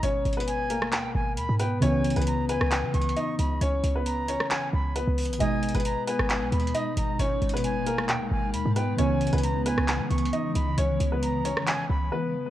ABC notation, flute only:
X:1
M:4/4
L:1/8
Q:1/4=134
K:C#dor
V:1 name="Flute"
z2 g2 =g ^g b =g | g2 a g2 c'2 b | z2 a2 g b z2 | g2 a g2 b2 a |
z2 g2 =g ^g b =g | g2 a g2 c'2 b | z2 a2 g b z2 |]